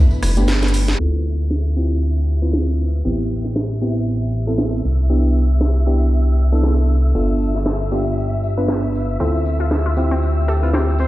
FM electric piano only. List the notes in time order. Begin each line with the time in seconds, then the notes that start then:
Already playing: A3 B3 D4 E4
0.37 A3 B3 D4 G4
1.00 C4 E4 F4 A4
1.76 C4 E4 F4 G4
2.42 C4 E4 F4 B4
3.05 B3 C4 E4 G4
3.82 B3 C4 E4 G4
4.47 B3 C4 E4 A4
5.10 B3 D4 E4 G4
5.87 B3 D4 E4 G4
6.52 B3 D4 E4 A4
7.15 B3 D4 F4 A4
7.92 B3 D4 F4 G4
8.58 B3 D4 F4 B4
9.20 C4 E4 F4 A4
9.97 C4 E4 F4 G4
10.62 C4 E4 F4 B4